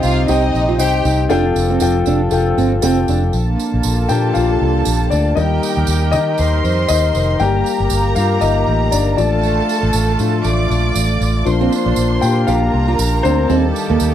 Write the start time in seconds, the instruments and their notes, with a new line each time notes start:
Already playing: analog synth pad C3 C4 D#4 G4, grand piano C3 D#4 C5 G5
0.03 fingered electric bass C2, violin section F4 F5, tambourine
0.28 fingered electric bass C2, grand piano D#4 C5 G5, violin section D#4 D#5, steel-string acoustic guitar G4, tambourine
0.54 fingered electric bass A#1, tambourine
0.69 steel-string acoustic guitar F4
0.79 fingered electric bass C2, grand piano D#4 C5 G5, violin section G4 G5, tambourine
1.05 fingered electric bass C2, steel-string acoustic guitar D#4, tambourine
1.29 fingered electric bass F1, analog synth pad F3 A4, steel-string acoustic guitar D4, grand piano F4 A4 G5, tambourine
1.56 fingered electric bass F1, tambourine
1.70 steel-string acoustic guitar C4
1.80 fingered electric bass F1, grand piano F4 A4 G5, tambourine
2.06 fingered electric bass F1, steel-string acoustic guitar D4, tambourine
2.31 fingered electric bass F1, grand piano F4 A4 G5, tambourine
2.58 fingered electric bass G1, steel-string acoustic guitar C4, tambourine
2.82 fingered electric bass F1, steel-string acoustic guitar C4, grand piano F4 A4 G5, tambourine
3.08 fingered electric bass F1, steel-string acoustic guitar D4, tambourine
3.33 fingered electric bass A#1, analog synth pad A#3 D4 F4, violin section A4 A5, tambourine
3.59 tambourine
3.74 fingered electric bass A#1
3.83 fingered electric bass A#1, tambourine
4.09 fingered electric bass A#2, grand piano F3 A#3 D4 G4 G5, tambourine
4.34 fingered electric bass A#1, grand piano F4 F5, tambourine
4.61 fingered electric bass C2
4.85 fingered electric bass A#1, tambourine
5.10 fingered electric bass D2, grand piano D4 D5, tambourine
5.35 fingered electric bass D#2, analog synth pad D#3 D#4 G4 A#4, grand piano G3 A#3 D#4 D#5, violin section G4 G5, tambourine
5.63 tambourine
5.77 fingered electric bass D#2
5.87 fingered electric bass D#2, tambourine
6.11 fingered electric bass D#3, grand piano D#4 D#5, tambourine
6.38 fingered electric bass D#2, violin section C5 C6, tambourine
6.64 fingered electric bass F2, tambourine
6.88 fingered electric bass D#2, grand piano D#4 D#5, tambourine
7.15 fingered electric bass F1, tambourine
7.40 fingered electric bass G1, grand piano G3 A#3 G4 D5 G5, analog synth pad A#3 G4, violin section A#4 A#5, tambourine
7.66 tambourine
7.80 fingered electric bass G1
7.90 fingered electric bass G1, tambourine
8.15 fingered electric bass G2, grand piano F4 F5, tambourine
8.41 fingered electric bass G1, grand piano D#4 D#5, tambourine
8.67 fingered electric bass A1
8.91 fingered electric bass G1, grand piano D4 D5, tambourine
9.17 fingered electric bass A1, grand piano F3 A3 D4 D5, analog synth pad A3 F4, violin section A4 A5, tambourine
9.43 tambourine
9.69 tambourine
9.83 fingered electric bass A1
9.93 fingered electric bass A1, tambourine
10.19 fingered electric bass A2, grand piano F3 A3 D4, tambourine
10.44 fingered electric bass A1, violin section D5 D6, tambourine
10.70 fingered electric bass A#1, tambourine
10.95 fingered electric bass A1, tambourine
11.21 fingered electric bass A1, tambourine
11.45 fingered electric bass A#1, grand piano F3 A#3 D4, analog synth pad A#3 D4 F4, violin section C5 C6, tambourine
11.61 steel-string acoustic guitar C4
11.73 tambourine
11.86 fingered electric bass A#1, steel-string acoustic guitar D4
11.96 fingered electric bass A#1, tambourine
12.21 fingered electric bass A#2, grand piano G4 G5, tambourine
12.47 fingered electric bass A#1, grand piano F4 F5, steel-string acoustic guitar G4, violin section A#4 A#5, tambourine
12.74 fingered electric bass C2
12.88 steel-string acoustic guitar F4
12.99 fingered electric bass A#1, tambourine
13.23 fingered electric bass D2, grand piano C4 C5, steel-string acoustic guitar D4, tambourine
13.49 fingered electric bass D#2, analog synth pad D#3 A#3 D#4 G4, grand piano G3 A#3 D#4, steel-string acoustic guitar C4, violin section A4 A5, tambourine
13.76 tambourine
13.90 fingered electric bass D#2, steel-string acoustic guitar A#3
14.00 fingered electric bass D#2, tambourine